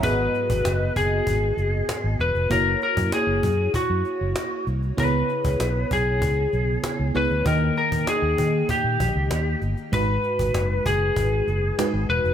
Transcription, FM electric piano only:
<<
  \new Staff \with { instrumentName = "FM electric piano" } { \time 4/4 \key gis \minor \tempo 4 = 97 << { <cis'' fis''>16 r2. r8. | r1 | r1 | r1 |
r1 | } \\ { <b fis' gis' dis''>1 | <ais e' fis' cis''>1 | <b e' gis' cis''>2.~ <b e' gis' cis''>8 <b e' gis' cis''>8 | <ais dis' dis'' g''>1 |
<gis dis' fis' b'>2. <gis dis' fis' b'>4 | } >> }
  \new Staff \with { instrumentName = "FM electric piano" } { \clef bass \time 4/4 \key gis \minor gis,4. r2 r8 | r1 | cis4. r2 r8 | dis4. r2 r8 |
gis,4. r2 r8 | }
>>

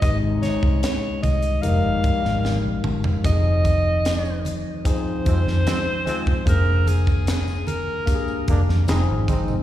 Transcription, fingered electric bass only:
\new Staff \with { instrumentName = "Fingered electric bass" } { \clef bass \time 4/4 \key f \minor \tempo 4 = 75 aes,,8 r16 c,16 r8 c,8 f,,16 g,,16 r16 aes,,8 bes,,16 g,,8 | f,,4.~ f,,16 r8. f,16 f,16 r4 | f,,4.~ f,,16 r8. f,,16 f,16 f,,16 aes,,16 g,,8 | }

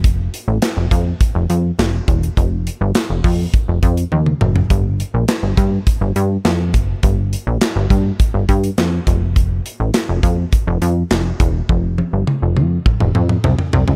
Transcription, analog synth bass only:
\new Staff \with { instrumentName = "Analog synth bass" } { \clef bass \time 4/4 \key g \minor \tempo 4 = 103 f,,8. a,,16 r16 f,,16 f,8 r16 f,,16 f,8 f,,8 e,,8 | f,,8. g,,16 r16 f,,16 f,8 r16 f,,16 f,8 ees,8 fis,,8 | g,,8. bes,,16 r16 g,,16 g,8 r16 g,,16 g,8 f,8 fis,,8 | g,,8. bes,,16 r16 g,,16 g,8 r16 g,,16 g,8 f,8 f,,8~ |
f,,8. a,,16 r16 f,,16 f,8 r16 f,,16 f,8 f,,8 e,,8 | f,,8. g,,16 r16 f,,16 f,8 r16 f,,16 f,8 c,16 r16 c,16 cis,16 | }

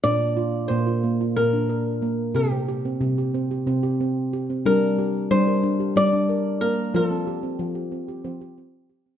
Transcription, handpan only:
<<
  \new Staff \with { instrumentName = "Handpan" } { \time 7/8 \key bes \major \tempo 4 = 91 d'8 f'8 bes16 f'16 bes16 f'8 d'16 bes'8 bes8 | g'16 c'16 g'16 c'8 g'16 c'16 g'16 c'16 g'16 c'8 g'16 c'16 | d'8 g'8 d'16 bes'16 d'16 g'8 d'16 bes'8 bes8 | f'16 c'16 g'16 c'8 g'16 c'16 g'16 c'16 g'16 c'8 g'16 c'16 | }
  \new Staff \with { instrumentName = "Handpan" } { \clef bass \time 7/8 \key bes \major bes,4 bes,4 bes,4. | c4 c4 c4. | g4 g4 g4. | f4 f4 f4. | }
>>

